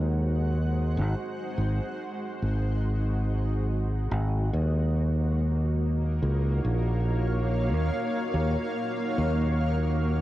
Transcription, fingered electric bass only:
0.00 0.99 D#2 medium
0.97 1.13 G#1 medium
1.58 1.79 G#1 medium
2.42 4.08 G#1 medium
4.11 4.49 G#1 medium
4.53 6.19 D#2 medium
6.22 6.60 C#2 medium
6.65 7.73 A#1 medium
7.73 7.89 D#2 medium
8.34 8.55 D#2 medium
9.18 10.21 D#2 medium

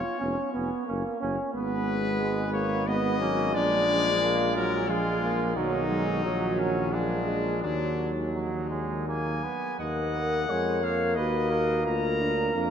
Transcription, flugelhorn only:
0.20 0.35 C#4 medium
0.54 0.69 C#4 medium
0.88 1.03 C#4 medium
1.22 1.37 C#4 medium
1.55 2.84 B3 medium
2.87 3.20 B3 medium
3.21 3.54 A#3 medium
3.53 4.88 G#3 medium
4.89 5.58 G#3 medium
5.57 6.24 F#3 medium
6.24 6.96 F#3 medium
6.94 7.66 G#3 medium
7.64 8.11 F#3 medium
8.36 8.69 F#3 medium
8.70 9.07 G#3 medium
9.07 9.45 A#3 medium
9.43 9.79 B3 medium
9.80 10.51 D#5 medium
10.49 11.16 C#5 medium
11.17 11.50 B4 medium
11.51 11.85 A#4 medium
11.86 12.70 A#4 medium

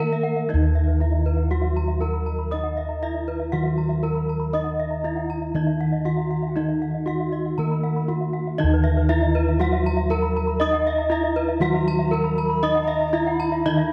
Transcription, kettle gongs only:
0.00 0.96 D#3 medium
0.49 1.97 D#4 medium
0.54 3.51 D#2 medium
1.00 1.08 E4 soft
2.01 2.09 E4 soft
2.52 4.00 D#5 medium
3.03 3.11 E4 soft
3.53 5.01 D#3 medium
4.04 4.12 E4 soft
4.53 6.01 D#5 medium
5.04 5.12 E4 soft
5.55 7.03 D#3 medium
6.06 6.14 E4 soft
6.56 8.04 D#4 medium
7.07 7.15 E4 soft
7.58 9.05 D#3 medium
8.08 8.16 E4 soft
8.58 10.06 D#4 medium
8.64 11.60 D#2 medium
9.09 9.17 E4 soft
10.10 10.18 E4 soft
10.60 12.08 D#5 medium
11.10 11.18 E4 soft
11.60 13.09 D#3 medium
12.12 12.20 E4 soft
12.63 13.93 D#5 medium
13.14 13.22 E4 soft
13.65 13.93 D#3 medium

